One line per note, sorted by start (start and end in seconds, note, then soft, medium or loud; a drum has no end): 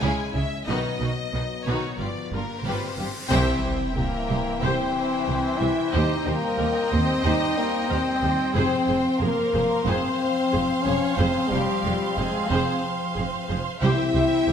0.00 0.10 C#2 medium
0.00 0.10 C#3 medium
0.00 0.64 G#3 medium
0.00 0.32 G#3 medium
0.00 0.68 C#4 medium
0.00 0.32 C#4 medium
0.00 0.32 E4 medium
0.00 0.32 G#4 medium
0.00 0.34 G#5 medium
0.34 0.42 C#2 soft
0.34 0.43 C#3 soft
0.34 0.43 G#3 soft
0.34 0.42 C#4 soft
0.34 0.44 C#4 soft
0.34 0.43 E4 soft
0.34 0.67 E5 medium
0.67 0.75 B1 medium
0.67 0.76 B2 medium
0.67 0.98 D#3 medium
0.67 1.99 F#3 medium
0.67 2.32 B3 medium
0.67 0.98 D#4 medium
0.67 0.98 F#4 medium
0.67 0.98 B4 medium
0.67 1.64 D#5 medium
0.67 cymbal swell medium
1.00 1.09 B1 soft
1.00 1.08 B2 soft
1.00 1.09 D#3 soft
1.00 1.09 D#4 soft
1.00 1.09 F#4 soft
1.33 1.41 B1 soft
1.33 1.42 B2 soft
1.33 1.42 D#3 soft
1.33 1.42 B3 soft
1.33 1.42 D#4 soft
1.66 1.74 B1 medium
1.66 1.75 B2 medium
1.66 1.97 D#3 medium
1.66 1.97 D#4 medium
1.66 1.97 F#4 medium
1.66 1.97 B4 medium
1.66 1.99 C#5 medium
1.99 2.07 G1 soft
1.99 2.08 G2 soft
1.99 2.32 F3 soft
1.99 2.08 G3 soft
1.99 2.07 F4 soft
1.99 2.08 F4 soft
1.99 2.07 G4 soft
1.99 2.32 D5 medium
2.32 2.40 G1 soft
2.32 2.41 G2 soft
2.32 2.41 G3 soft
2.32 2.63 A#3 medium
2.32 2.42 D4 soft
2.32 2.41 F4 soft
2.32 2.43 F4 soft
2.32 2.64 A#4 medium
2.64 2.72 G1 soft
2.64 2.74 G2 soft
2.64 2.96 G3 soft
2.64 3.12 C4 medium
2.64 2.96 F4 medium
2.64 2.95 G4 medium
2.64 2.95 B4 medium
2.64 3.29 C5 medium
2.98 3.06 G1 soft
2.98 3.06 G2 soft
2.98 3.06 G3 soft
2.98 3.06 F4 soft
2.98 3.07 F4 soft
2.98 3.07 G4 soft
3.29 3.61 C2 medium
3.29 5.89 E3 medium
3.29 8.52 G3 medium
3.29 3.91 C4 medium
3.29 8.51 C4 medium
3.29 3.61 G4 medium
3.29 3.92 C5 loud
3.29 3.61 C5 medium
3.29 8.53 C5 medium
3.29 5.89 E5 medium
3.29 9.18 G5 medium
3.29 8.53 G5 medium
3.29 sub drop medium
3.33 5.90 E4 medium
3.63 3.72 C2 soft
3.63 3.71 G4 soft
3.63 3.71 C5 medium
3.95 4.04 C2 medium
3.95 4.60 A#3 medium
3.95 4.05 G4 medium
3.95 4.62 A#4 medium
4.28 4.36 C2 medium
4.28 4.38 C2 medium
4.28 4.37 G4 medium
4.28 4.37 C5 medium
4.60 4.70 C2 medium
4.60 4.71 C2 medium
4.60 5.59 C4 medium
4.60 4.92 G4 medium
4.60 5.58 C5 medium
4.60 4.92 C5 medium
5.27 5.36 C2 medium
5.27 5.37 C2 soft
5.27 5.35 G4 soft
5.57 5.69 C2 medium
5.57 5.91 E4 medium
5.57 5.68 G4 medium
5.57 5.68 C5 soft
5.57 5.92 E5 medium
5.62 5.70 C2 medium
5.92 6.02 D#2 medium
5.92 6.03 D#2 medium
5.92 8.53 G3 medium
5.92 8.56 D#4 medium
5.92 6.25 D#4 medium
5.92 6.23 G4 medium
5.92 6.23 C5 medium
5.92 8.56 D#5 medium
5.92 6.26 D#5 medium
6.25 6.35 D#2 medium
6.25 6.35 D#2 soft
6.25 6.92 A#3 medium
6.25 6.34 G4 soft
6.25 6.92 A#4 medium
6.25 6.33 C5 medium
6.57 6.67 D#2 medium
6.57 6.66 G4 medium
6.57 6.65 A#4 medium
6.90 7.00 D#2 medium
6.90 7.01 D#2 medium
6.90 7.25 C4 medium
6.90 6.99 G4 medium
6.90 6.98 C5 medium
6.90 7.24 C5 medium
7.24 7.33 D#2 medium
7.24 7.34 D#2 medium
7.24 7.57 D#4 medium
7.24 7.55 G4 medium
7.24 7.54 C5 medium
7.24 7.57 D#5 medium
7.58 7.90 A#3 medium
7.58 7.91 A#4 medium
7.88 7.98 D#2 soft
7.88 7.98 D#2 medium
7.88 8.53 C4 medium
7.88 7.97 G4 medium
7.88 7.96 A#4 medium
7.88 8.55 C5 medium
8.22 8.30 D#2 medium
8.22 8.31 D#2 medium
8.22 8.31 G4 medium
8.22 8.31 C5 medium
8.54 8.63 F1 medium
8.54 8.63 F2 medium
8.54 13.81 F3 medium
8.54 13.66 F3 medium
8.54 9.19 C4 medium
8.54 13.66 C4 medium
8.54 8.86 G#4 medium
8.54 8.86 C5 medium
8.54 13.78 C5 medium
8.54 9.20 C5 medium
8.54 13.82 F5 medium
8.54 13.77 C6 medium
8.88 8.96 F1 medium
8.88 8.97 F2 medium
8.88 8.96 G#4 medium
8.88 8.96 C5 medium
9.20 9.30 F1 medium
9.20 9.30 F2 medium
9.20 9.88 A#3 medium
9.20 9.28 G#4 medium
9.20 9.87 A#4 medium
9.20 13.82 F5 medium
9.53 9.62 F1 medium
9.53 9.63 F2 medium
9.53 9.62 G#4 medium
9.53 9.61 C5 medium
9.84 9.95 F1 medium
9.84 9.96 F2 medium
9.84 10.84 C4 medium
9.84 10.17 G#4 medium
9.84 10.85 C5 medium
9.84 10.17 C5 medium
10.52 10.62 F1 soft
10.52 10.62 F2 medium
10.52 10.61 G#4 medium
10.82 11.17 C#4 medium
10.82 10.94 C5 medium
10.82 11.18 C#5 medium
10.86 10.95 F1 medium
10.86 10.95 F2 medium
10.86 10.94 G#4 medium
11.17 11.27 F1 medium
11.17 11.27 F2 medium
11.17 11.50 C4 medium
11.17 11.49 G#4 medium
11.17 11.51 C5 medium
11.17 11.49 C5 medium
11.49 11.60 F1 medium
11.49 11.60 F2 medium
11.49 12.16 G3 medium
11.49 11.59 G#3 medium
11.49 12.16 G4 medium
11.49 11.60 C5 medium
11.84 11.93 F1 medium
11.84 11.93 F2 medium
11.84 11.92 G#3 medium
11.84 11.92 F4 medium
12.16 12.27 F1 medium
12.16 12.26 F2 medium
12.16 12.49 G#3 medium
12.16 12.25 G#4 medium
12.16 12.50 G#4 medium
12.16 12.25 C5 medium
12.48 12.59 F1 medium
12.48 12.59 F2 medium
12.48 12.82 C4 medium
12.48 12.81 G#4 medium
12.48 12.81 C5 medium
12.48 12.83 C5 medium
13.15 13.25 F1 soft
13.15 13.25 F2 medium
13.15 13.23 G#4 medium
13.49 13.58 F1 medium
13.49 13.58 F2 soft
13.49 13.57 G#4 medium
13.49 13.57 C5 medium
13.81 13.90 C2 medium
13.81 13.91 C2 medium
13.81 14.53 C3 medium
13.81 14.53 E3 medium
13.81 14.53 C4 medium
13.81 14.53 E4 loud
13.81 14.12 G4 medium
13.81 14.53 C5 medium
13.81 14.12 C5 medium
13.81 14.53 E5 medium
13.81 14.53 G5 medium
14.14 14.23 C2 soft
14.14 14.23 C2 medium
14.14 14.22 G4 medium
14.14 14.22 C5 soft
14.47 14.53 C2 medium
14.47 14.53 G4 medium